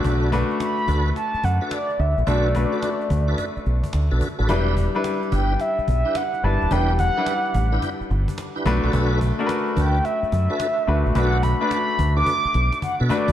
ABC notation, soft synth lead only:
X:1
M:4/4
L:1/16
Q:"Swing 16ths" 1/4=108
K:Em
V:1 name="Soft synth lead"
z4 b4 a2 f2 d2 e2 | d12 z4 | z6 g2 e2 e2 f2 a2 | g2 f6 z8 |
z6 g2 e2 e6 | f2 b2 b3 d'4- d' f2 d2 |]